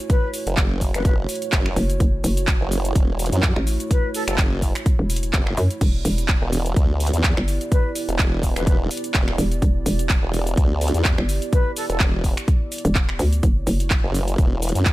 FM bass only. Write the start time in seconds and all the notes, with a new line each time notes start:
1.76 F#1
2.00 F#1
2.24 F#1
3.56 A1
4.99 E1
5.57 F#2
5.81 E1
6.05 E1
7.37 G1
9.38 E1
9.62 E1
9.86 E1
11.18 G1
12.85 E1
13.19 D2
13.43 F#1
13.67 F#1